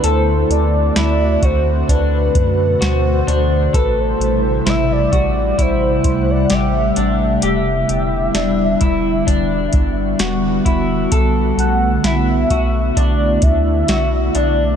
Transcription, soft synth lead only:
X:1
M:4/4
L:1/16
Q:1/4=65
K:Ador
V:1 name="Soft synth lead"
c2 d4 c2 B4 c4 | B c3 e d3 c3 d e4 | e12 z4 | z2 f2 e4 d2 e4 d2 |]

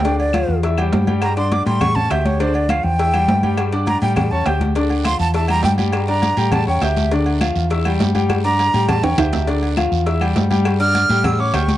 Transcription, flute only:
X:1
M:4/4
L:1/8
Q:1/4=204
K:Dm
V:1 name="Flute"
g d3 z4 | b c' d' c' ^c' a e ^c | c d f g4- g | z2 b g g a g z |
z2 c' a a b g z | z b3 a g e2 | z8 | z b3 a g e2 |
z8 | z f'3 e' d' ^c'2 |]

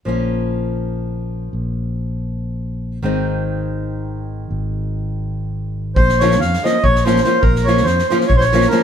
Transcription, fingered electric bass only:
X:1
M:7/8
L:1/8
Q:1/4=142
K:Bbm
V:1 name="Fingered electric bass" clef=bass
B,,,6- B,,, | B,,,6- B,,, | A,,,6- A,,, | A,,,6- A,,, |
B,,,2 F,, z B,,,3 | B,,,2 F,, z B,,,3 |]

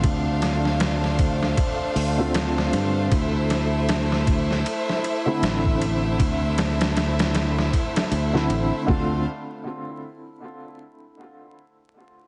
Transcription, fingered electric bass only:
X:1
M:4/4
L:1/8
Q:"Swing 16ths" 1/4=78
K:Dm
V:1 name="Fingered electric bass" clef=bass
D,,4 z D,,2 G,, | D,,4 z2 A,,,2 | D,,4 z D,, A,,, D,, | z8 |]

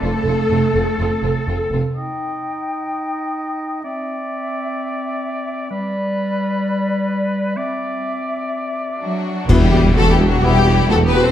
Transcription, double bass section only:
X:1
M:4/4
L:1/8
Q:1/4=128
K:C
V:1 name="Double bass section" clef=bass
F,,, F,,, F,,, F,,, F,,, F,,, F,,, F,,, | z8 | z8 | z8 |
z8 | [K:Em] E,,,2 E,,,2 E,,,2 E,,,2 |]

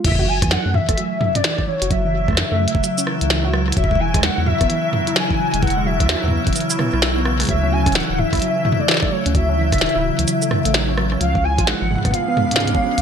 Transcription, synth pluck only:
X:1
M:4/4
L:1/16
Q:"Swing 16ths" 1/4=129
K:Dlyd
V:1 name="Synth pluck" clef=bass
E, F F, E, F, A, E, A, F, z F, C E, z E, F | F, E, F, A, E, A, F, z F, C E, z E, F F, E, | F, G, E, G, F, z F, B, E, z E, E F, E, F, G, | E, G, F, z F, B, E, z E, E B, E E, B, B, G, |
F, C F, C E, z E, E F, E, F, A, E, A, F, C | F, C E, z E, E F, E, F, A, E, A, F, C F, C | ^E, z E, ^E G, E, G, B, E, B, G, C G, C E, z |]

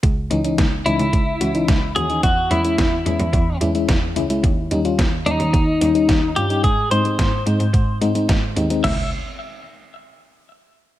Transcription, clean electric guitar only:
X:1
M:4/4
L:1/8
Q:1/4=109
K:C#m
V:1 name="Clean electric guitar"
z3 E4 G | F E4 z3 | z3 D4 =G | G ^B4 z3 |
e z6 z |]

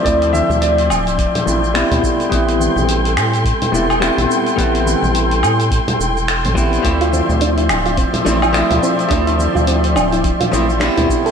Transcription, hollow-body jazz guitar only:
X:1
M:4/4
L:1/8
Q:"Swing 16ths" 1/4=106
K:Ddor
V:1 name="Hollow-body jazz guitar"
[F,A,CE]4- [F,A,CE] [F,A,CE] [G,B,CE]2 | [G,B,CE]4- [G,B,CE] [G,B,CE] [G,B,CE]2 | [G,B,CE]4- [G,B,CE] z2 [G,B,CE] | [F,A,CE]4- [F,A,CE] [F,A,CE] [F,A,CE]2 |
[F,A,CE]4- [F,A,CE] [F,A,CE] [G,B,CE]2 |]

